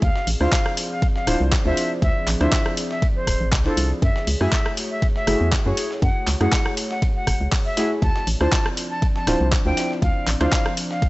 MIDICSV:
0, 0, Header, 1, 6, 480
1, 0, Start_track
1, 0, Tempo, 500000
1, 21, Time_signature, 4, 2, 24, 8
1, 10649, End_track
2, 0, Start_track
2, 0, Title_t, "Flute"
2, 0, Program_c, 0, 73
2, 21, Note_on_c, 0, 77, 99
2, 267, Note_off_c, 0, 77, 0
2, 390, Note_on_c, 0, 77, 103
2, 711, Note_off_c, 0, 77, 0
2, 871, Note_on_c, 0, 77, 96
2, 1028, Note_off_c, 0, 77, 0
2, 1110, Note_on_c, 0, 77, 96
2, 1374, Note_off_c, 0, 77, 0
2, 1590, Note_on_c, 0, 76, 96
2, 1835, Note_off_c, 0, 76, 0
2, 1941, Note_on_c, 0, 76, 104
2, 2187, Note_off_c, 0, 76, 0
2, 2310, Note_on_c, 0, 76, 98
2, 2631, Note_off_c, 0, 76, 0
2, 2790, Note_on_c, 0, 76, 90
2, 2948, Note_off_c, 0, 76, 0
2, 3030, Note_on_c, 0, 72, 98
2, 3351, Note_off_c, 0, 72, 0
2, 3510, Note_on_c, 0, 69, 92
2, 3755, Note_off_c, 0, 69, 0
2, 3862, Note_on_c, 0, 76, 96
2, 4107, Note_off_c, 0, 76, 0
2, 4231, Note_on_c, 0, 76, 101
2, 4551, Note_off_c, 0, 76, 0
2, 4710, Note_on_c, 0, 76, 91
2, 4868, Note_off_c, 0, 76, 0
2, 4951, Note_on_c, 0, 76, 99
2, 5271, Note_off_c, 0, 76, 0
2, 5430, Note_on_c, 0, 73, 89
2, 5675, Note_off_c, 0, 73, 0
2, 5781, Note_on_c, 0, 78, 97
2, 6027, Note_off_c, 0, 78, 0
2, 6150, Note_on_c, 0, 78, 103
2, 6471, Note_off_c, 0, 78, 0
2, 6630, Note_on_c, 0, 78, 95
2, 6788, Note_off_c, 0, 78, 0
2, 6870, Note_on_c, 0, 78, 97
2, 7191, Note_off_c, 0, 78, 0
2, 7350, Note_on_c, 0, 76, 96
2, 7595, Note_off_c, 0, 76, 0
2, 7701, Note_on_c, 0, 81, 102
2, 7947, Note_off_c, 0, 81, 0
2, 8070, Note_on_c, 0, 81, 102
2, 8334, Note_off_c, 0, 81, 0
2, 8551, Note_on_c, 0, 81, 97
2, 8708, Note_off_c, 0, 81, 0
2, 8790, Note_on_c, 0, 81, 98
2, 9111, Note_off_c, 0, 81, 0
2, 9271, Note_on_c, 0, 79, 96
2, 9516, Note_off_c, 0, 79, 0
2, 9621, Note_on_c, 0, 77, 102
2, 9867, Note_off_c, 0, 77, 0
2, 9991, Note_on_c, 0, 77, 105
2, 10311, Note_off_c, 0, 77, 0
2, 10470, Note_on_c, 0, 77, 92
2, 10628, Note_off_c, 0, 77, 0
2, 10649, End_track
3, 0, Start_track
3, 0, Title_t, "Synth stab"
3, 0, Program_c, 1, 62
3, 387, Note_on_c, 1, 62, 85
3, 389, Note_on_c, 1, 64, 79
3, 391, Note_on_c, 1, 65, 79
3, 393, Note_on_c, 1, 72, 97
3, 540, Note_off_c, 1, 62, 0
3, 541, Note_off_c, 1, 64, 0
3, 542, Note_off_c, 1, 65, 0
3, 543, Note_off_c, 1, 72, 0
3, 1218, Note_on_c, 1, 62, 92
3, 1220, Note_on_c, 1, 64, 87
3, 1222, Note_on_c, 1, 65, 85
3, 1224, Note_on_c, 1, 72, 101
3, 1473, Note_off_c, 1, 62, 0
3, 1474, Note_off_c, 1, 64, 0
3, 1475, Note_off_c, 1, 65, 0
3, 1476, Note_off_c, 1, 72, 0
3, 1584, Note_on_c, 1, 62, 85
3, 1588, Note_on_c, 1, 64, 80
3, 1592, Note_on_c, 1, 65, 77
3, 1597, Note_on_c, 1, 72, 92
3, 2276, Note_off_c, 1, 62, 0
3, 2278, Note_off_c, 1, 64, 0
3, 2280, Note_off_c, 1, 65, 0
3, 2282, Note_off_c, 1, 72, 0
3, 2307, Note_on_c, 1, 62, 89
3, 2309, Note_on_c, 1, 64, 82
3, 2311, Note_on_c, 1, 65, 78
3, 2313, Note_on_c, 1, 72, 100
3, 2560, Note_off_c, 1, 62, 0
3, 2561, Note_off_c, 1, 64, 0
3, 2562, Note_off_c, 1, 65, 0
3, 2563, Note_off_c, 1, 72, 0
3, 3507, Note_on_c, 1, 62, 73
3, 3510, Note_on_c, 1, 64, 70
3, 3511, Note_on_c, 1, 65, 66
3, 3514, Note_on_c, 1, 72, 85
3, 3660, Note_off_c, 1, 62, 0
3, 3661, Note_off_c, 1, 64, 0
3, 3662, Note_off_c, 1, 65, 0
3, 3663, Note_off_c, 1, 72, 0
3, 4228, Note_on_c, 1, 57, 86
3, 4230, Note_on_c, 1, 64, 80
3, 4232, Note_on_c, 1, 66, 78
3, 4234, Note_on_c, 1, 68, 97
3, 4380, Note_off_c, 1, 57, 0
3, 4381, Note_off_c, 1, 64, 0
3, 4382, Note_off_c, 1, 66, 0
3, 4383, Note_off_c, 1, 68, 0
3, 5058, Note_on_c, 1, 57, 97
3, 5061, Note_on_c, 1, 64, 85
3, 5062, Note_on_c, 1, 66, 85
3, 5064, Note_on_c, 1, 68, 105
3, 5313, Note_off_c, 1, 57, 0
3, 5314, Note_off_c, 1, 64, 0
3, 5315, Note_off_c, 1, 66, 0
3, 5316, Note_off_c, 1, 68, 0
3, 5424, Note_on_c, 1, 57, 87
3, 5428, Note_on_c, 1, 64, 80
3, 5432, Note_on_c, 1, 66, 80
3, 5436, Note_on_c, 1, 68, 94
3, 6116, Note_off_c, 1, 57, 0
3, 6118, Note_off_c, 1, 64, 0
3, 6120, Note_off_c, 1, 66, 0
3, 6122, Note_off_c, 1, 68, 0
3, 6147, Note_on_c, 1, 57, 91
3, 6149, Note_on_c, 1, 64, 87
3, 6151, Note_on_c, 1, 66, 88
3, 6154, Note_on_c, 1, 68, 101
3, 6400, Note_off_c, 1, 57, 0
3, 6401, Note_off_c, 1, 64, 0
3, 6402, Note_off_c, 1, 66, 0
3, 6403, Note_off_c, 1, 68, 0
3, 7458, Note_on_c, 1, 57, 90
3, 7460, Note_on_c, 1, 64, 80
3, 7462, Note_on_c, 1, 66, 78
3, 7464, Note_on_c, 1, 68, 97
3, 7623, Note_off_c, 1, 57, 0
3, 7625, Note_off_c, 1, 64, 0
3, 7625, Note_off_c, 1, 66, 0
3, 7626, Note_off_c, 1, 68, 0
3, 8067, Note_on_c, 1, 62, 84
3, 8069, Note_on_c, 1, 64, 76
3, 8071, Note_on_c, 1, 65, 80
3, 8073, Note_on_c, 1, 72, 98
3, 8220, Note_off_c, 1, 62, 0
3, 8221, Note_off_c, 1, 64, 0
3, 8222, Note_off_c, 1, 65, 0
3, 8223, Note_off_c, 1, 72, 0
3, 8898, Note_on_c, 1, 62, 91
3, 8900, Note_on_c, 1, 64, 86
3, 8902, Note_on_c, 1, 65, 88
3, 8904, Note_on_c, 1, 72, 102
3, 9153, Note_off_c, 1, 62, 0
3, 9154, Note_off_c, 1, 64, 0
3, 9155, Note_off_c, 1, 65, 0
3, 9156, Note_off_c, 1, 72, 0
3, 9264, Note_on_c, 1, 62, 87
3, 9268, Note_on_c, 1, 64, 81
3, 9272, Note_on_c, 1, 65, 80
3, 9276, Note_on_c, 1, 72, 91
3, 9956, Note_off_c, 1, 62, 0
3, 9958, Note_off_c, 1, 64, 0
3, 9960, Note_off_c, 1, 65, 0
3, 9962, Note_off_c, 1, 72, 0
3, 9987, Note_on_c, 1, 62, 96
3, 9989, Note_on_c, 1, 64, 86
3, 9991, Note_on_c, 1, 65, 82
3, 9993, Note_on_c, 1, 72, 102
3, 10240, Note_off_c, 1, 62, 0
3, 10241, Note_off_c, 1, 64, 0
3, 10242, Note_off_c, 1, 65, 0
3, 10243, Note_off_c, 1, 72, 0
3, 10649, End_track
4, 0, Start_track
4, 0, Title_t, "Analog synth pad"
4, 0, Program_c, 2, 89
4, 0, Note_on_c, 2, 68, 73
4, 21, Note_on_c, 2, 53, 76
4, 21, Note_on_c, 2, 60, 78
4, 21, Note_on_c, 2, 74, 89
4, 3823, Note_off_c, 2, 53, 0
4, 3823, Note_off_c, 2, 60, 0
4, 3823, Note_off_c, 2, 74, 0
4, 3861, Note_on_c, 2, 66, 73
4, 3862, Note_on_c, 2, 57, 82
4, 3862, Note_on_c, 2, 73, 94
4, 7663, Note_off_c, 2, 57, 0
4, 7663, Note_off_c, 2, 66, 0
4, 7663, Note_off_c, 2, 68, 0
4, 7663, Note_off_c, 2, 73, 0
4, 7701, Note_on_c, 2, 53, 74
4, 7701, Note_on_c, 2, 60, 81
4, 7701, Note_on_c, 2, 62, 70
4, 7702, Note_on_c, 2, 74, 89
4, 10649, Note_off_c, 2, 53, 0
4, 10649, Note_off_c, 2, 60, 0
4, 10649, Note_off_c, 2, 62, 0
4, 10649, Note_off_c, 2, 74, 0
4, 10649, End_track
5, 0, Start_track
5, 0, Title_t, "FM bass"
5, 0, Program_c, 3, 39
5, 21, Note_on_c, 3, 38, 107
5, 99, Note_off_c, 3, 38, 0
5, 261, Note_on_c, 3, 33, 85
5, 339, Note_off_c, 3, 33, 0
5, 390, Note_on_c, 3, 38, 85
5, 457, Note_off_c, 3, 38, 0
5, 1222, Note_on_c, 3, 26, 92
5, 1299, Note_off_c, 3, 26, 0
5, 1351, Note_on_c, 3, 36, 97
5, 1487, Note_off_c, 3, 36, 0
5, 1591, Note_on_c, 3, 38, 101
5, 1657, Note_off_c, 3, 38, 0
5, 1941, Note_on_c, 3, 38, 103
5, 2019, Note_off_c, 3, 38, 0
5, 2181, Note_on_c, 3, 33, 82
5, 2259, Note_off_c, 3, 33, 0
5, 2311, Note_on_c, 3, 38, 84
5, 2377, Note_off_c, 3, 38, 0
5, 3141, Note_on_c, 3, 26, 84
5, 3219, Note_off_c, 3, 26, 0
5, 3271, Note_on_c, 3, 33, 88
5, 3382, Note_on_c, 3, 36, 100
5, 3396, Note_off_c, 3, 33, 0
5, 3533, Note_off_c, 3, 36, 0
5, 3622, Note_on_c, 3, 36, 83
5, 3773, Note_off_c, 3, 36, 0
5, 3862, Note_on_c, 3, 42, 101
5, 3939, Note_off_c, 3, 42, 0
5, 4102, Note_on_c, 3, 37, 84
5, 4179, Note_off_c, 3, 37, 0
5, 4231, Note_on_c, 3, 42, 80
5, 4297, Note_off_c, 3, 42, 0
5, 5062, Note_on_c, 3, 30, 91
5, 5139, Note_off_c, 3, 30, 0
5, 5191, Note_on_c, 3, 40, 92
5, 5328, Note_off_c, 3, 40, 0
5, 5431, Note_on_c, 3, 42, 99
5, 5497, Note_off_c, 3, 42, 0
5, 5781, Note_on_c, 3, 42, 106
5, 5859, Note_off_c, 3, 42, 0
5, 6022, Note_on_c, 3, 37, 83
5, 6099, Note_off_c, 3, 37, 0
5, 6151, Note_on_c, 3, 42, 84
5, 6217, Note_off_c, 3, 42, 0
5, 6981, Note_on_c, 3, 30, 85
5, 7059, Note_off_c, 3, 30, 0
5, 7110, Note_on_c, 3, 37, 88
5, 7177, Note_off_c, 3, 37, 0
5, 7701, Note_on_c, 3, 38, 104
5, 7779, Note_off_c, 3, 38, 0
5, 7942, Note_on_c, 3, 33, 85
5, 8019, Note_off_c, 3, 33, 0
5, 8071, Note_on_c, 3, 38, 85
5, 8137, Note_off_c, 3, 38, 0
5, 8902, Note_on_c, 3, 26, 90
5, 8979, Note_off_c, 3, 26, 0
5, 9031, Note_on_c, 3, 36, 94
5, 9167, Note_off_c, 3, 36, 0
5, 9271, Note_on_c, 3, 38, 99
5, 9337, Note_off_c, 3, 38, 0
5, 9621, Note_on_c, 3, 38, 100
5, 9699, Note_off_c, 3, 38, 0
5, 9861, Note_on_c, 3, 33, 79
5, 9939, Note_off_c, 3, 33, 0
5, 9991, Note_on_c, 3, 38, 83
5, 10057, Note_off_c, 3, 38, 0
5, 10649, End_track
6, 0, Start_track
6, 0, Title_t, "Drums"
6, 20, Note_on_c, 9, 51, 89
6, 21, Note_on_c, 9, 36, 127
6, 116, Note_off_c, 9, 51, 0
6, 117, Note_off_c, 9, 36, 0
6, 150, Note_on_c, 9, 38, 57
6, 246, Note_off_c, 9, 38, 0
6, 261, Note_on_c, 9, 46, 106
6, 357, Note_off_c, 9, 46, 0
6, 390, Note_on_c, 9, 37, 61
6, 486, Note_off_c, 9, 37, 0
6, 501, Note_on_c, 9, 36, 127
6, 501, Note_on_c, 9, 38, 109
6, 501, Note_on_c, 9, 51, 84
6, 504, Note_on_c, 9, 39, 127
6, 597, Note_off_c, 9, 36, 0
6, 597, Note_off_c, 9, 38, 0
6, 597, Note_off_c, 9, 51, 0
6, 600, Note_off_c, 9, 39, 0
6, 631, Note_on_c, 9, 37, 78
6, 727, Note_off_c, 9, 37, 0
6, 741, Note_on_c, 9, 46, 115
6, 741, Note_on_c, 9, 51, 68
6, 837, Note_off_c, 9, 46, 0
6, 837, Note_off_c, 9, 51, 0
6, 981, Note_on_c, 9, 36, 122
6, 981, Note_on_c, 9, 51, 94
6, 1077, Note_off_c, 9, 36, 0
6, 1077, Note_off_c, 9, 51, 0
6, 1110, Note_on_c, 9, 38, 46
6, 1206, Note_off_c, 9, 38, 0
6, 1220, Note_on_c, 9, 51, 74
6, 1221, Note_on_c, 9, 37, 65
6, 1221, Note_on_c, 9, 46, 115
6, 1316, Note_off_c, 9, 51, 0
6, 1317, Note_off_c, 9, 37, 0
6, 1317, Note_off_c, 9, 46, 0
6, 1460, Note_on_c, 9, 38, 117
6, 1460, Note_on_c, 9, 51, 93
6, 1461, Note_on_c, 9, 36, 124
6, 1464, Note_on_c, 9, 39, 119
6, 1556, Note_off_c, 9, 38, 0
6, 1556, Note_off_c, 9, 51, 0
6, 1557, Note_off_c, 9, 36, 0
6, 1560, Note_off_c, 9, 39, 0
6, 1701, Note_on_c, 9, 46, 106
6, 1701, Note_on_c, 9, 51, 77
6, 1797, Note_off_c, 9, 46, 0
6, 1797, Note_off_c, 9, 51, 0
6, 1941, Note_on_c, 9, 36, 125
6, 1941, Note_on_c, 9, 51, 89
6, 2037, Note_off_c, 9, 36, 0
6, 2037, Note_off_c, 9, 51, 0
6, 2182, Note_on_c, 9, 46, 102
6, 2182, Note_on_c, 9, 51, 75
6, 2185, Note_on_c, 9, 39, 58
6, 2278, Note_off_c, 9, 46, 0
6, 2278, Note_off_c, 9, 51, 0
6, 2281, Note_off_c, 9, 39, 0
6, 2311, Note_on_c, 9, 37, 59
6, 2311, Note_on_c, 9, 51, 45
6, 2407, Note_off_c, 9, 37, 0
6, 2407, Note_off_c, 9, 51, 0
6, 2421, Note_on_c, 9, 36, 126
6, 2421, Note_on_c, 9, 38, 117
6, 2421, Note_on_c, 9, 51, 87
6, 2425, Note_on_c, 9, 39, 124
6, 2517, Note_off_c, 9, 36, 0
6, 2517, Note_off_c, 9, 38, 0
6, 2517, Note_off_c, 9, 51, 0
6, 2521, Note_off_c, 9, 39, 0
6, 2551, Note_on_c, 9, 37, 74
6, 2647, Note_off_c, 9, 37, 0
6, 2661, Note_on_c, 9, 46, 107
6, 2662, Note_on_c, 9, 51, 73
6, 2757, Note_off_c, 9, 46, 0
6, 2758, Note_off_c, 9, 51, 0
6, 2791, Note_on_c, 9, 38, 52
6, 2887, Note_off_c, 9, 38, 0
6, 2901, Note_on_c, 9, 36, 122
6, 2902, Note_on_c, 9, 51, 92
6, 2997, Note_off_c, 9, 36, 0
6, 2998, Note_off_c, 9, 51, 0
6, 3141, Note_on_c, 9, 36, 62
6, 3141, Note_on_c, 9, 51, 68
6, 3142, Note_on_c, 9, 37, 64
6, 3142, Note_on_c, 9, 46, 113
6, 3237, Note_off_c, 9, 36, 0
6, 3237, Note_off_c, 9, 51, 0
6, 3238, Note_off_c, 9, 37, 0
6, 3238, Note_off_c, 9, 46, 0
6, 3381, Note_on_c, 9, 36, 127
6, 3381, Note_on_c, 9, 38, 118
6, 3381, Note_on_c, 9, 51, 93
6, 3385, Note_on_c, 9, 39, 110
6, 3477, Note_off_c, 9, 36, 0
6, 3477, Note_off_c, 9, 38, 0
6, 3477, Note_off_c, 9, 51, 0
6, 3481, Note_off_c, 9, 39, 0
6, 3511, Note_on_c, 9, 38, 50
6, 3607, Note_off_c, 9, 38, 0
6, 3622, Note_on_c, 9, 46, 112
6, 3622, Note_on_c, 9, 51, 74
6, 3718, Note_off_c, 9, 46, 0
6, 3718, Note_off_c, 9, 51, 0
6, 3861, Note_on_c, 9, 36, 119
6, 3862, Note_on_c, 9, 51, 91
6, 3957, Note_off_c, 9, 36, 0
6, 3958, Note_off_c, 9, 51, 0
6, 3991, Note_on_c, 9, 38, 57
6, 4087, Note_off_c, 9, 38, 0
6, 4102, Note_on_c, 9, 46, 104
6, 4198, Note_off_c, 9, 46, 0
6, 4231, Note_on_c, 9, 37, 61
6, 4327, Note_off_c, 9, 37, 0
6, 4341, Note_on_c, 9, 36, 124
6, 4341, Note_on_c, 9, 38, 120
6, 4341, Note_on_c, 9, 51, 88
6, 4345, Note_on_c, 9, 39, 112
6, 4437, Note_off_c, 9, 36, 0
6, 4437, Note_off_c, 9, 38, 0
6, 4437, Note_off_c, 9, 51, 0
6, 4441, Note_off_c, 9, 39, 0
6, 4471, Note_on_c, 9, 37, 77
6, 4567, Note_off_c, 9, 37, 0
6, 4581, Note_on_c, 9, 51, 72
6, 4582, Note_on_c, 9, 46, 101
6, 4677, Note_off_c, 9, 51, 0
6, 4678, Note_off_c, 9, 46, 0
6, 4821, Note_on_c, 9, 36, 114
6, 4821, Note_on_c, 9, 51, 91
6, 4917, Note_off_c, 9, 36, 0
6, 4917, Note_off_c, 9, 51, 0
6, 4951, Note_on_c, 9, 38, 43
6, 5047, Note_off_c, 9, 38, 0
6, 5062, Note_on_c, 9, 37, 65
6, 5062, Note_on_c, 9, 46, 105
6, 5062, Note_on_c, 9, 51, 72
6, 5158, Note_off_c, 9, 37, 0
6, 5158, Note_off_c, 9, 46, 0
6, 5158, Note_off_c, 9, 51, 0
6, 5301, Note_on_c, 9, 36, 116
6, 5302, Note_on_c, 9, 38, 126
6, 5302, Note_on_c, 9, 51, 93
6, 5304, Note_on_c, 9, 39, 108
6, 5397, Note_off_c, 9, 36, 0
6, 5398, Note_off_c, 9, 38, 0
6, 5398, Note_off_c, 9, 51, 0
6, 5400, Note_off_c, 9, 39, 0
6, 5541, Note_on_c, 9, 46, 106
6, 5542, Note_on_c, 9, 51, 89
6, 5637, Note_off_c, 9, 46, 0
6, 5638, Note_off_c, 9, 51, 0
6, 5671, Note_on_c, 9, 38, 41
6, 5767, Note_off_c, 9, 38, 0
6, 5781, Note_on_c, 9, 36, 115
6, 5782, Note_on_c, 9, 51, 90
6, 5877, Note_off_c, 9, 36, 0
6, 5878, Note_off_c, 9, 51, 0
6, 6021, Note_on_c, 9, 46, 104
6, 6022, Note_on_c, 9, 51, 74
6, 6024, Note_on_c, 9, 39, 59
6, 6117, Note_off_c, 9, 46, 0
6, 6118, Note_off_c, 9, 51, 0
6, 6120, Note_off_c, 9, 39, 0
6, 6150, Note_on_c, 9, 37, 62
6, 6151, Note_on_c, 9, 51, 45
6, 6246, Note_off_c, 9, 37, 0
6, 6247, Note_off_c, 9, 51, 0
6, 6261, Note_on_c, 9, 36, 124
6, 6261, Note_on_c, 9, 38, 119
6, 6261, Note_on_c, 9, 51, 90
6, 6264, Note_on_c, 9, 39, 117
6, 6357, Note_off_c, 9, 36, 0
6, 6357, Note_off_c, 9, 38, 0
6, 6357, Note_off_c, 9, 51, 0
6, 6360, Note_off_c, 9, 39, 0
6, 6390, Note_on_c, 9, 37, 82
6, 6486, Note_off_c, 9, 37, 0
6, 6501, Note_on_c, 9, 46, 106
6, 6501, Note_on_c, 9, 51, 73
6, 6597, Note_off_c, 9, 46, 0
6, 6597, Note_off_c, 9, 51, 0
6, 6630, Note_on_c, 9, 38, 52
6, 6726, Note_off_c, 9, 38, 0
6, 6741, Note_on_c, 9, 36, 113
6, 6741, Note_on_c, 9, 51, 93
6, 6837, Note_off_c, 9, 36, 0
6, 6837, Note_off_c, 9, 51, 0
6, 6981, Note_on_c, 9, 36, 62
6, 6981, Note_on_c, 9, 37, 71
6, 6981, Note_on_c, 9, 46, 104
6, 6981, Note_on_c, 9, 51, 71
6, 7077, Note_off_c, 9, 36, 0
6, 7077, Note_off_c, 9, 37, 0
6, 7077, Note_off_c, 9, 46, 0
6, 7077, Note_off_c, 9, 51, 0
6, 7221, Note_on_c, 9, 36, 123
6, 7221, Note_on_c, 9, 46, 78
6, 7224, Note_on_c, 9, 39, 108
6, 7317, Note_off_c, 9, 36, 0
6, 7317, Note_off_c, 9, 46, 0
6, 7320, Note_off_c, 9, 39, 0
6, 7461, Note_on_c, 9, 38, 114
6, 7461, Note_on_c, 9, 46, 99
6, 7461, Note_on_c, 9, 51, 82
6, 7557, Note_off_c, 9, 38, 0
6, 7557, Note_off_c, 9, 46, 0
6, 7557, Note_off_c, 9, 51, 0
6, 7701, Note_on_c, 9, 36, 117
6, 7701, Note_on_c, 9, 51, 86
6, 7797, Note_off_c, 9, 36, 0
6, 7797, Note_off_c, 9, 51, 0
6, 7830, Note_on_c, 9, 38, 57
6, 7926, Note_off_c, 9, 38, 0
6, 7941, Note_on_c, 9, 46, 84
6, 8037, Note_off_c, 9, 46, 0
6, 8070, Note_on_c, 9, 37, 64
6, 8166, Note_off_c, 9, 37, 0
6, 8181, Note_on_c, 9, 36, 118
6, 8181, Note_on_c, 9, 38, 118
6, 8181, Note_on_c, 9, 51, 89
6, 8184, Note_on_c, 9, 39, 119
6, 8277, Note_off_c, 9, 36, 0
6, 8277, Note_off_c, 9, 38, 0
6, 8277, Note_off_c, 9, 51, 0
6, 8280, Note_off_c, 9, 39, 0
6, 8310, Note_on_c, 9, 37, 81
6, 8406, Note_off_c, 9, 37, 0
6, 8421, Note_on_c, 9, 46, 103
6, 8421, Note_on_c, 9, 51, 72
6, 8517, Note_off_c, 9, 46, 0
6, 8517, Note_off_c, 9, 51, 0
6, 8661, Note_on_c, 9, 36, 109
6, 8661, Note_on_c, 9, 51, 90
6, 8757, Note_off_c, 9, 36, 0
6, 8757, Note_off_c, 9, 51, 0
6, 8791, Note_on_c, 9, 38, 47
6, 8887, Note_off_c, 9, 38, 0
6, 8901, Note_on_c, 9, 37, 70
6, 8901, Note_on_c, 9, 38, 115
6, 8901, Note_on_c, 9, 46, 104
6, 8901, Note_on_c, 9, 51, 79
6, 8997, Note_off_c, 9, 37, 0
6, 8997, Note_off_c, 9, 38, 0
6, 8997, Note_off_c, 9, 46, 0
6, 8997, Note_off_c, 9, 51, 0
6, 9141, Note_on_c, 9, 36, 116
6, 9142, Note_on_c, 9, 51, 64
6, 9144, Note_on_c, 9, 39, 117
6, 9237, Note_off_c, 9, 36, 0
6, 9238, Note_off_c, 9, 51, 0
6, 9240, Note_off_c, 9, 39, 0
6, 9381, Note_on_c, 9, 38, 110
6, 9381, Note_on_c, 9, 46, 102
6, 9381, Note_on_c, 9, 51, 88
6, 9477, Note_off_c, 9, 38, 0
6, 9477, Note_off_c, 9, 46, 0
6, 9477, Note_off_c, 9, 51, 0
6, 9511, Note_on_c, 9, 38, 39
6, 9607, Note_off_c, 9, 38, 0
6, 9621, Note_on_c, 9, 36, 115
6, 9621, Note_on_c, 9, 51, 84
6, 9717, Note_off_c, 9, 36, 0
6, 9717, Note_off_c, 9, 51, 0
6, 9861, Note_on_c, 9, 46, 103
6, 9861, Note_on_c, 9, 51, 72
6, 9864, Note_on_c, 9, 39, 64
6, 9957, Note_off_c, 9, 46, 0
6, 9957, Note_off_c, 9, 51, 0
6, 9960, Note_off_c, 9, 39, 0
6, 9990, Note_on_c, 9, 37, 65
6, 9991, Note_on_c, 9, 51, 46
6, 10086, Note_off_c, 9, 37, 0
6, 10087, Note_off_c, 9, 51, 0
6, 10101, Note_on_c, 9, 36, 119
6, 10101, Note_on_c, 9, 38, 118
6, 10101, Note_on_c, 9, 51, 83
6, 10104, Note_on_c, 9, 39, 119
6, 10197, Note_off_c, 9, 36, 0
6, 10197, Note_off_c, 9, 38, 0
6, 10197, Note_off_c, 9, 51, 0
6, 10200, Note_off_c, 9, 39, 0
6, 10230, Note_on_c, 9, 37, 84
6, 10326, Note_off_c, 9, 37, 0
6, 10341, Note_on_c, 9, 46, 102
6, 10341, Note_on_c, 9, 51, 68
6, 10437, Note_off_c, 9, 46, 0
6, 10437, Note_off_c, 9, 51, 0
6, 10470, Note_on_c, 9, 38, 53
6, 10566, Note_off_c, 9, 38, 0
6, 10581, Note_on_c, 9, 36, 115
6, 10581, Note_on_c, 9, 51, 89
6, 10649, Note_off_c, 9, 36, 0
6, 10649, Note_off_c, 9, 51, 0
6, 10649, End_track
0, 0, End_of_file